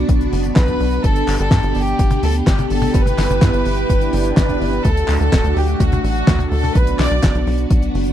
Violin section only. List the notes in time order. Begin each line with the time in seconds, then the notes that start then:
0.57 B4
1.04 A4
1.40 A4
1.76 G4
2.23 A4
2.47 G4
2.71 A4
2.94 B4
4.37 B4
4.85 A4
5.21 A4
5.57 G4
5.80 F#4
6.04 F#4
6.52 A4
6.75 B4
6.99 D5